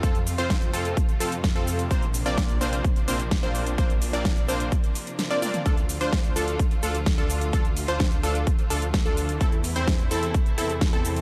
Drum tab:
HH |xxoxxxoxxxoxxxox|xxoxxxoxxxoxxxox|xxoxxxoxxxoxxxox|xxoxxxoxxxoxxxox|
SH |xxxxxxxxxxxxxxxx|xxxxxxxxxxxxxxxx|xxxxxxxxxxxxxxxx|xxxxxxxxxxxxxxxx|
SD |----o-------o---|----o-------o---|----o-------oo--|----o-------o---|
T1 |----------------|----------------|--------------o-|----------------|
T2 |----------------|----------------|---------------o|----------------|
BD |o---o---o---o---|o---o---o---o---|o---o---o-------|o---o---o---o---|

HH |xxoxxxoxxxoxxxox|xxoxxxoxxxoxxxox|
SH |xxxxxxxxxxxxxxxx|xxxxxxxxxxxxxxxx|
SD |----o-------o---|----o-------o---|
T1 |----------------|----------------|
T2 |----------------|----------------|
BD |o---o---o---o---|o---o---o---o---|